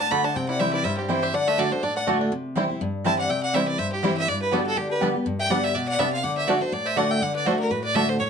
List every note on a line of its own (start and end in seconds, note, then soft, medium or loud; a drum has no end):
0.00 0.10 A2 medium
0.00 0.23 D4 soft
0.00 0.10 F#5 medium
0.00 0.12 A5 loud
0.10 0.35 D3 medium
0.10 0.21 A3 medium
0.10 0.36 A3 medium
0.10 0.21 F#4 medium
0.10 0.21 D5 medium
0.10 0.23 F#5 loud
0.10 0.21 A5 medium
0.10 0.26 B5 loud
0.24 0.35 D4 medium
0.24 0.36 F#5 medium
0.24 0.38 A5 loud
0.36 0.83 C3 loud
0.36 0.71 C4 medium
0.36 0.49 E5 medium
0.36 0.48 G5 medium
0.49 0.73 E4 medium
0.49 0.60 D5 medium
0.49 0.61 F#5 loud
0.59 0.83 E3 medium
0.59 0.84 G3 medium
0.59 0.70 C4 medium
0.59 0.84 C4 medium
0.59 0.70 E4 medium
0.59 0.84 E4 medium
0.59 0.73 C5 medium
0.59 0.70 C5 medium
0.59 0.73 E5 medium
0.59 0.70 G5 medium
0.73 1.07 E4 medium
0.73 0.85 B4 medium
0.73 0.86 D5 medium
0.84 1.32 G2 loud
0.84 1.20 G3 medium
0.84 0.98 C5 medium
0.84 0.97 E5 medium
0.98 1.32 C4 medium
0.98 1.11 G4 medium
0.98 muted resonator guitar played with a steel bar stroke soft
1.08 1.32 E3 medium
1.08 1.33 G3 medium
1.08 1.19 C4 medium
1.08 1.33 C4 medium
1.08 1.19 E4 medium
1.08 1.34 E4 medium
1.08 1.33 E4 loud
1.08 1.23 G4 medium
1.08 1.24 C5 medium
1.08 1.19 C5 medium
1.08 1.19 G5 medium
1.23 1.34 G4 medium
1.23 1.34 C5 medium
1.23 1.36 E5 medium
1.34 1.56 D3 medium
1.34 1.57 D4 medium
1.34 1.47 D5 medium
1.34 1.49 F#5 loud
1.47 1.81 A3 medium
1.47 1.59 C5 medium
1.47 1.60 E5 loud
1.57 1.71 D3 medium
1.57 1.68 A3 medium
1.57 1.71 A3 medium
1.57 1.71 D4 medium
1.57 1.68 F#4 medium
1.57 1.70 F#4 medium
1.57 1.71 A4 medium
1.57 1.68 D5 medium
1.57 1.74 D5 medium
1.57 1.68 A5 medium
1.71 1.82 D4 medium
1.71 1.83 D4 soft
1.71 1.82 F#4 medium
1.71 1.82 A4 medium
1.71 1.84 C5 medium
1.83 2.30 A2 loud
1.83 1.96 D4 medium
1.83 1.96 A4 medium
1.83 1.96 D5 medium
1.96 2.20 D4 medium
1.96 2.07 D5 medium
1.96 2.03 F#5 medium
2.07 2.31 D3 medium
2.07 2.17 A3 medium
2.07 2.32 A3 medium
2.07 2.31 A3 loud
2.07 2.31 D4 medium
2.07 2.17 F#4 medium
2.07 2.32 F#4 loud
2.07 2.17 D5 medium
2.07 2.17 A5 medium
2.21 2.32 D4 medium
2.32 2.79 C3 loud
2.56 2.69 E3 medium
2.56 2.69 G3 medium
2.56 2.63 G3 medium
2.56 2.66 C4 medium
2.56 2.69 C4 medium
2.56 2.63 C4 medium
2.56 2.66 E4 medium
2.56 2.68 E4 medium
2.56 2.63 E4 medium
2.56 2.66 C5 medium
2.56 2.66 G5 medium
2.69 2.81 C4 soft
2.69 2.80 E4 medium
2.81 3.28 G2 loud
3.04 3.28 E3 medium
3.04 3.29 G3 medium
3.04 3.12 G3 medium
3.04 3.15 C4 medium
3.04 3.29 C4 medium
3.04 3.12 C4 medium
3.04 3.15 E4 medium
3.04 3.29 E4 loud
3.04 3.12 E4 medium
3.04 3.15 C5 medium
3.04 3.18 E5 medium
3.04 3.15 G5 loud
3.04 3.18 A5 loud
3.18 3.29 D5 medium
3.18 3.32 F#5 loud
3.29 3.77 C3 loud
3.29 3.43 E5 medium
3.29 3.43 G5 loud
3.43 3.55 D5 medium
3.43 3.56 F#5 loud
3.53 3.78 E3 medium
3.53 3.78 G3 medium
3.53 3.61 G3 medium
3.53 3.64 C4 medium
3.53 3.78 C4 medium
3.53 3.61 C4 medium
3.53 3.64 E4 medium
3.53 3.79 E4 medium
3.53 3.61 E4 medium
3.53 3.64 C5 medium
3.53 3.68 C5 medium
3.53 3.68 E5 medium
3.53 3.64 G5 medium
3.68 3.79 B4 medium
3.68 3.80 D5 medium
3.79 4.26 G2 loud
3.79 3.92 C5 loud
3.79 3.92 E5 loud
3.92 4.04 E4 medium
3.92 4.06 G4 medium
4.02 4.27 E3 medium
4.02 4.27 G3 medium
4.02 4.10 G3 medium
4.02 4.13 C4 medium
4.02 4.27 C4 medium
4.02 4.10 C4 medium
4.02 4.13 E4 medium
4.02 4.10 E4 medium
4.02 4.28 E4 medium
4.02 4.17 G4 medium
4.02 4.13 C5 loud
4.02 4.17 C5 medium
4.02 4.13 G5 medium
4.16 4.27 C5 medium
4.16 4.30 E5 loud
4.27 4.75 G2 loud
4.27 4.41 B4 medium
4.27 4.41 D5 loud
4.41 4.52 G4 medium
4.41 4.55 B4 medium
4.51 4.76 D3 medium
4.51 4.76 G3 medium
4.51 4.59 G3 medium
4.51 4.62 B3 medium
4.51 4.76 B3 medium
4.51 4.59 B3 medium
4.51 4.65 D4 soft
4.51 4.59 D4 medium
4.51 4.66 F#4 medium
4.51 4.62 G4 medium
4.51 4.77 G4 medium
4.51 4.62 D5 medium
4.51 4.62 A5 medium
4.65 4.76 F#4 medium
4.65 4.79 A4 loud
4.76 5.00 D3 loud
4.76 4.90 D4 medium
4.76 4.91 G4 medium
4.90 5.00 G4 medium
4.90 4.98 B4 loud
5.00 5.14 D3 medium
5.00 5.08 G3 medium
5.00 5.14 G3 medium
5.00 5.11 B3 medium
5.00 5.15 B3 medium
5.00 5.08 B3 medium
5.00 5.08 D4 medium
5.00 5.11 G4 medium
5.00 5.13 G4 medium
5.00 5.11 D5 loud
5.00 5.11 A5 medium
5.14 5.26 B3 soft
5.14 5.25 G4 soft
5.26 5.73 G2 loud
5.39 5.51 E5 medium
5.39 5.52 G5 loud
5.49 5.73 D3 medium
5.49 5.74 G3 medium
5.49 5.57 G3 medium
5.49 5.60 B3 medium
5.49 5.74 B3 medium
5.49 5.57 B3 medium
5.49 5.57 D4 medium
5.49 5.60 G4 medium
5.49 5.74 G4 medium
5.49 5.60 D5 medium
5.49 5.64 D5 medium
5.49 5.65 F#5 loud
5.49 5.60 A5 medium
5.64 5.75 C5 medium
5.64 5.77 E5 loud
5.75 5.98 B2 loud
5.75 5.88 B4 medium
5.75 5.88 D5 medium
5.88 5.99 D5 loud
5.88 6.01 F#5 loud
5.98 6.23 C3 medium
5.98 6.05 G3 medium
5.98 6.09 B3 medium
5.98 6.05 B3 medium
5.98 6.06 D4 medium
5.98 6.09 G4 medium
5.98 6.12 B4 medium
5.98 6.09 D5 medium
5.98 6.12 E5 loud
5.98 6.09 A5 medium
6.13 6.23 C5 medium
6.13 6.26 F5 loud
6.23 6.46 D3 loud
6.23 6.37 D5 medium
6.23 6.37 F#5 loud
6.37 6.48 C5 medium
6.37 6.50 E5 loud
6.47 6.61 D3 medium
6.47 6.57 A3 medium
6.47 6.61 A3 medium
6.47 6.54 A3 medium
6.47 6.61 D4 medium
6.47 6.55 D4 medium
6.47 6.58 F#4 medium
6.47 6.60 F#4 medium
6.47 6.60 A4 medium
6.47 6.58 D5 medium
6.47 6.63 D5 medium
6.47 6.58 A5 medium
6.61 6.73 D4 medium
6.61 6.72 F#4 medium
6.61 6.71 A4 medium
6.61 6.75 C5 medium
6.72 7.19 A2 loud
6.72 6.85 A4 medium
6.72 6.88 D5 medium
6.85 6.97 C5 medium
6.85 6.99 E5 loud
6.96 7.20 D3 medium
6.96 7.06 A3 medium
6.96 7.20 A3 loud
6.96 7.03 A3 medium
6.96 7.21 D4 medium
6.96 7.04 D4 medium
6.96 7.07 F#4 medium
6.96 7.21 F#4 loud
6.96 7.07 D5 loud
6.96 7.11 D5 medium
6.96 7.12 F#5 medium
6.96 7.07 A5 medium
7.11 7.21 E5 medium
7.11 7.24 G5 loud
7.21 7.45 D3 medium
7.21 7.35 D5 medium
7.21 7.35 F#5 medium
7.35 7.47 B4 medium
7.35 7.48 D5 medium
7.45 7.69 D3 medium
7.45 7.55 A3 medium
7.45 7.70 A3 medium
7.45 7.52 A3 medium
7.45 7.70 D4 medium
7.45 7.53 D4 medium
7.45 7.56 F#4 medium
7.45 7.70 F#4 medium
7.45 7.60 A4 medium
7.45 7.59 C5 medium
7.45 7.56 D5 medium
7.45 7.56 A5 medium
7.60 7.69 F#4 medium
7.60 7.73 A#4 medium
7.71 8.17 A2 loud
7.71 7.84 F#4 medium
7.71 7.84 B4 medium
7.84 7.95 B4 medium
7.84 7.97 D5 loud
7.95 8.18 D3 medium
7.95 8.05 A3 medium
7.95 8.19 A3 medium
7.95 8.01 A3 medium
7.95 8.19 D4 medium
7.95 8.02 D4 medium
7.95 8.05 F#4 medium
7.95 8.19 F#4 medium
7.95 8.08 A4 medium
7.95 8.05 D5 medium
7.95 8.10 E5 loud
7.95 8.05 A5 medium
8.09 8.18 A4 medium
8.09 8.19 C5 loud
8.19 8.30 A2 loud
8.19 8.30 A4 medium
8.19 8.27 C#5 medium